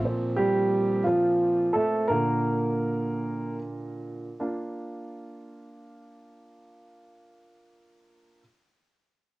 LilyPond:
<<
  \new Staff \with { instrumentName = "Upright piano" } { \time 6/8 \key bes \major \tempo 4. = 48 r8 <g g'>4 <f f'>4 <a a'>8 | bes'2 r4 | <bes d' f'>2.~ | <bes d' f'>2. | }
  \new Staff \with { instrumentName = "Upright piano" } { \clef bass \time 6/8 \key bes \major <bes, f c'>2. | <bes, d bes>2. | r2. | r2. | }
>>